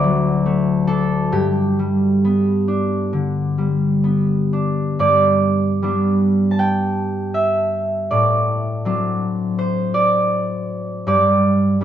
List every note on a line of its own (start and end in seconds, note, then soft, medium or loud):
0.00 1.36 D2 medium
0.00 1.36 F#3 soft
0.00 0.86 D4 soft
0.00 3.54 D5 medium
0.00 0.20 E5 medium
0.46 1.36 A3 soft
0.87 2.67 D4 soft
0.87 1.36 A4 medium
1.32 4.98 G2 soft
1.32 5.22 G4 medium
1.79 3.57 G3 soft
2.24 4.03 B3 soft
2.68 4.52 D4 soft
3.13 5.04 D3 soft
3.58 5.81 G3 soft
4.04 5.82 B3 soft
4.53 5.83 D4 soft
4.99 8.14 G2 medium
4.99 8.09 D5 medium
5.83 8.14 G3 soft
5.83 8.14 B3 soft
5.83 8.85 D4 soft
6.51 6.63 A5 medium
6.59 8.14 G5 medium
7.34 8.63 E5 medium
8.10 11.10 A2 soft
8.10 9.93 D5 medium
8.85 11.10 F#3 soft
8.85 11.10 C4 soft
8.85 11.80 D4 soft
9.59 11.10 C5 medium
9.94 11.06 D5 medium
11.07 11.84 G2 medium
11.07 11.84 D5 medium
11.81 11.84 G3 soft
11.81 11.84 B3 soft